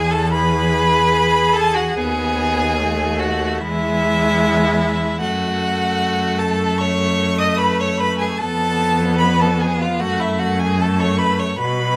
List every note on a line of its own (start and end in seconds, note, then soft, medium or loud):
0.00 1.93 E2 medium
0.00 0.13 G#4 loud
0.00 0.28 G#4 loud
0.00 0.14 G#5 loud
0.11 0.34 A4 medium
0.11 0.32 A5 loud
0.32 1.99 G#4 medium
0.32 1.55 B4 loud
0.32 1.58 B5 loud
1.53 1.76 A4 loud
1.53 1.78 A5 loud
1.74 1.96 F#4 medium
1.74 1.98 F#5 loud
1.97 3.62 D#2 loud
1.97 2.81 B3 medium
1.97 3.21 G#4 loud
1.97 3.21 G#5 loud
2.80 3.62 A3 medium
3.19 3.63 F#4 loud
3.19 3.60 F#5 loud
3.59 5.23 E2 medium
3.59 5.20 G#3 loud
3.59 5.21 E4 loud
3.59 5.20 E5 loud
5.20 8.42 F#2 medium
5.20 6.76 A3 medium
5.20 6.40 F#4 loud
5.20 6.41 F#5 loud
6.39 6.82 A4 loud
6.39 6.80 A5 loud
6.78 8.42 A3 medium
6.78 7.39 C#5 loud
6.78 7.40 C#6 loud
7.39 7.58 D#5 loud
7.39 7.60 D#6 loud
7.58 7.82 B4 loud
7.58 7.81 B5 loud
7.80 8.02 C#5 loud
7.80 7.99 C#6 loud
7.97 8.23 B4 medium
7.97 8.18 B5 loud
8.19 8.42 G#4 medium
8.19 8.39 G#5 loud
8.38 10.03 F2 medium
8.38 10.02 B3 loud
8.38 9.22 A4 medium
8.38 9.18 A5 loud
9.18 9.44 B4 loud
9.18 9.42 B5 loud
9.40 9.64 A4 medium
9.40 9.61 A5 medium
9.60 9.83 G#4 loud
9.60 9.79 G#5 medium
9.80 10.02 F4 medium
9.80 10.01 F5 medium
9.99 11.59 F#2 medium
9.99 10.79 A3 medium
9.99 10.21 F#4 loud
9.99 10.23 F#5 loud
10.20 10.41 E4 medium
10.20 10.40 E5 medium
10.39 10.59 F#4 medium
10.39 10.61 F#5 loud
10.60 10.84 G#4 medium
10.60 10.81 G#5 medium
10.80 11.58 A3 medium
10.80 11.02 A4 medium
10.80 11.01 A5 loud
11.00 11.18 C#5 medium
11.00 11.20 C#6 loud
11.19 11.41 B4 loud
11.19 11.41 B5 loud
11.39 11.58 C#5 medium
11.39 11.58 C#6 medium
11.59 11.96 B2 medium
11.59 11.96 F#3 medium
11.59 11.96 B4 loud
11.59 11.96 B5 loud